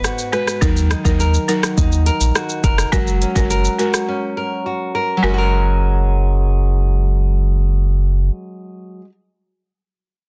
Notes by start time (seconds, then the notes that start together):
Already playing: G#2 B3 B4
0.04 F#4, cross-stick, shaker
0.18 shaker
0.32 G#3 F#4 B4, cross-stick, closed hi-hat, shaker
0.47 cross-stick, shaker
0.61 D#2 D#3 F#3 D#4 A#4, kick, shaker
0.77 shaker
0.91 D#4, cross-stick, closed hi-hat, shaker
1.05 D#2 F#3 D#4 A#4, kick, shaker
1.20 A#4, shaker
1.34 shaker
1.48 F#3 D#4 F#4 A#4, closed hi-hat, shaker
1.63 cross-stick, shaker
1.77 D#2 D#4, kick, shaker
1.92 shaker
2.06 A#4, closed hi-hat, shaker
2.21 A#1, shaker
2.35 F#4, cross-stick, shaker
2.49 shaker
2.64 F1 A#4, kick, closed hi-hat, shaker
2.78 cross-stick, shaker
2.92 F#1 F#3 G#3 F#4 A#4, kick, shaker
3.07 shaker
3.22 C#4, closed hi-hat, shaker
3.35 F#1 G#3 F#4 A#4, kick, shaker
3.50 A#4, shaker
3.65 shaker
3.79 G#3 F#4 A#4, closed hi-hat, shaker
3.94 cross-stick, shaker
4.08 C#4
4.37 A#4
4.66 F#4
4.95 A#4
5.17 F#3
5.23 F#1 G#3 F#4 A#4
5.29 C#4
5.34 F#4
5.38 A#4